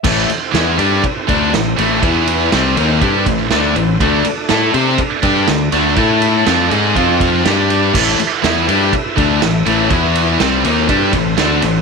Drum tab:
CC |x-------|--------|--------|--------|
RD |-xxxxxxx|xxxxxxxx|xxxxxxxx|xxxxxxxx|
SD |--o---o-|--o---o-|--o---oo|--o---o-|
BD |o---oo--|o---oo--|o---oo--|o---oo--|

CC |x-------|--------|
RD |-xxxxxxx|xxxxxxxx|
SD |--o---o-|--o---oo|
BD |o---oo--|o---oo--|